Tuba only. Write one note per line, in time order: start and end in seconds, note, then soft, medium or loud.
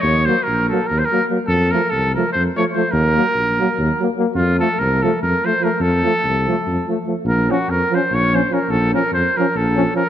0.03 0.27 D#2 loud
0.47 0.71 A#1 medium
0.91 1.03 D#2 medium
1.48 1.72 F2 loud
1.91 2.15 C2 medium
2.35 2.47 F2 medium
2.93 3.17 D#2 loud
3.35 3.59 A#1 medium
3.78 3.91 D#2 loud
4.36 4.60 F2 loud
4.80 5.04 C2 loud
5.23 5.35 F2 medium
5.80 6.04 F2 loud
6.24 6.48 C2 medium
6.67 6.79 F2 medium
7.25 7.48 A#1 loud
7.68 7.82 F2 medium
8.11 8.43 A#1 medium
8.69 8.93 A#1 loud
9.12 9.25 F2 medium
9.55 9.86 A#1 medium